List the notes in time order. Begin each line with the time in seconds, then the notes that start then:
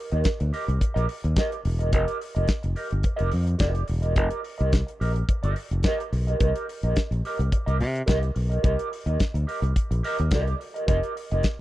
0.12 D#2 G4 A#4 D#5, closed hi-hat
0.24 kick, snare, closed hi-hat
0.40 D2, muted clean electric guitar stroke, closed hi-hat
0.53 G4 A#4 D#5, open hi-hat
0.67 C2, muted clean electric guitar stroke, closed hi-hat
0.80 muted clean electric guitar stroke, kick, closed hi-hat
0.94 A#1 G4 A#4 D#5, closed hi-hat
1.09 open hi-hat
1.24 D#2, muted clean electric guitar stroke, closed hi-hat
1.36 G4 A#4 D#5, kick, snare, closed hi-hat
1.52 muted clean electric guitar stroke, closed hi-hat
1.65 E1, muted clean electric guitar stroke, open hi-hat
1.79 G4 A#4 D#5, closed hi-hat
1.93 F1 G4 A#4 D#5, kick, closed hi-hat
2.08 closed hi-hat
2.20 muted clean electric guitar stroke, open hi-hat
2.35 F1 G4 A#4 D#5, closed hi-hat
2.48 kick, snare, closed hi-hat
2.63 F1, muted clean electric guitar stroke, closed hi-hat
2.76 G4 A#4 D#5, open hi-hat
2.90 G1, muted clean electric guitar stroke, closed hi-hat
3.03 muted clean electric guitar stroke, kick, closed hi-hat
3.16 F1 G4 A#4 D#5, closed hi-hat
3.31 F2, muted clean electric guitar stroke, open hi-hat
3.45 muted clean electric guitar stroke, closed hi-hat
3.58 F1 G4 A#4 D#5, kick, snare, closed hi-hat
3.73 muted clean electric guitar stroke, closed hi-hat
3.86 E1, muted clean electric guitar stroke, open hi-hat
4.02 G4 A#4 D#5, closed hi-hat
4.16 F1 G4 A#4 D#5, kick, closed hi-hat
4.31 closed hi-hat
4.43 muted clean electric guitar stroke, open hi-hat
4.58 C2 G4 A#4 D#5, closed hi-hat
4.73 kick, snare, closed hi-hat
4.87 muted clean electric guitar stroke, closed hi-hat
5.00 A#1 G4 A#4 D#5, open hi-hat
5.14 muted clean electric guitar stroke, closed hi-hat
5.29 muted clean electric guitar stroke, kick, closed hi-hat
5.43 G1 G4 A#4 D#5, closed hi-hat
5.56 muted clean electric guitar stroke, open hi-hat
5.71 F1, muted clean electric guitar stroke, closed hi-hat
5.83 G4 A#4 D#5, kick, snare, closed hi-hat
6.00 muted clean electric guitar stroke, closed hi-hat
6.12 B1, muted clean electric guitar stroke, open hi-hat
6.27 G4 A#4 D#5, closed hi-hat
6.39 C2 G4 A#4 D#5, kick, closed hi-hat
6.56 closed hi-hat
6.69 muted clean electric guitar stroke, open hi-hat
6.83 A#1 G4 A#4 D#5, closed hi-hat
6.96 kick, snare, closed hi-hat
7.11 A#1, muted clean electric guitar stroke, closed hi-hat
7.25 G4 A#4 D#5, open hi-hat
7.39 C2, muted clean electric guitar stroke, closed hi-hat
7.52 muted clean electric guitar stroke, kick, closed hi-hat
7.66 C2 G4 A#4 D#5, closed hi-hat
7.79 C3, muted clean electric guitar stroke, open hi-hat
7.94 muted clean electric guitar stroke, closed hi-hat
8.06 C2 G4 A#4 D#5, kick, snare, closed hi-hat
8.22 muted clean electric guitar stroke, closed hi-hat
8.35 B1, muted clean electric guitar stroke, open hi-hat
8.50 G4 A#4 D#5, closed hi-hat
8.63 C2 G4 A#4 D#5, kick, closed hi-hat
8.79 closed hi-hat
8.91 muted clean electric guitar stroke, open hi-hat
9.06 D#2 G4 A#4 D#5, closed hi-hat
9.20 kick, snare, closed hi-hat
9.34 D2, muted clean electric guitar stroke, closed hi-hat
9.47 G4 A#4 D#5, open hi-hat
9.62 C2, muted clean electric guitar stroke, closed hi-hat
9.76 kick, closed hi-hat
9.91 A#1, muted clean electric guitar stroke, closed hi-hat
10.03 G4 A#4 D#5, open hi-hat
10.19 D#2, muted clean electric guitar stroke, closed hi-hat
10.31 C2 G4 A#4 D#5, kick, snare, closed hi-hat
10.47 muted clean electric guitar stroke, closed hi-hat
10.59 muted clean electric guitar stroke, open hi-hat
10.74 G4 A#4 D#5, closed hi-hat
10.86 F1 G4 A#4 D#5, kick, closed hi-hat
11.03 closed hi-hat
11.16 muted clean electric guitar stroke, open hi-hat
11.31 F1 G4 A#4 D#5, closed hi-hat
11.43 kick, snare, closed hi-hat